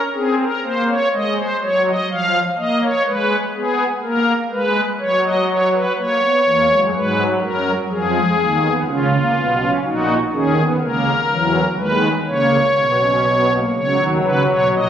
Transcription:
pipe organ
0.14 C4 G#4
0.39 A#4
0.63 A#3 C5
0.88 C#5
1.13 G#3 D#5
1.36 C5
1.62 F#3 C#5
1.86 D#5
2.10 F3 F5
2.57 A#3 D#5
2.82 C#5
3.06 G#3 B4
3.54 B3 G#4
4.03 A#3 A#4
4.51 G#3 B4
5.00 F#3 C#5
5.23 D#5
5.48 C#5
5.72 B4
5.97 A#3 C#5
6.22 B3
6.46 E2 E3 A#3
6.70 F#2 F#3 G#3
6.94 G#2 F#3 G#3 B4
7.41 F#2 F#3 A#4
7.89 F2 F3 G#4
8.14 G#3
8.38 D#2 D#3 A#3
8.62 B3
8.86 C#2 C#3 C#4 F4
9.11 A#3
9.35 B1 B2 B3
9.59 C#4
9.84 A#1 A#2 D#4 F#4
10.33 D#2 D#3 C#4 G#4
10.56 B3
10.80 C#2 C#3 A#3 A#4
11.30 E2 E3 F#3
11.78 D#2 D#3 G#3 B4
12.27 C#2 C#3 A#3 C#5
12.76 B1 B2 B3
13.01 C#4
13.25 B3
13.49 A#3
13.73 C#2 C#3 F#3 C#5
13.97 D#2 D#3
14.22 C#2 C#3 B4
14.47 B1 B2 C#5
14.71 A#1 A#2 D#5

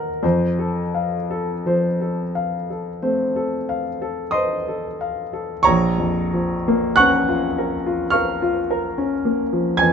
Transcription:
grand piano
Already playing: D#2 A#3 D#4 A#4 D#5 F#5
0.23 F2 C5
0.59 A4
0.95 F5
1.31 A4
1.66 F3 C5
2.01 A4
2.35 F5
2.70 A4
3.02 A3 C4 C5
3.36 A4
3.69 F5
4.02 A4
4.31 C5 D#5 C6 D#6
4.68 A4
5.01 F5
5.33 A4
5.63 A#1 C#5 A#5 C#6
5.98 F2
6.34 F3
6.68 A#3
6.96 C#4 F#5 C#6 F#6
7.28 F4
7.58 A#4
7.86 F4
8.10 A#4 F5 C#6 F6
8.42 F4
8.71 A#4
8.98 C#4
9.25 A#3
9.53 F3
9.77 F2 G#5 G#6

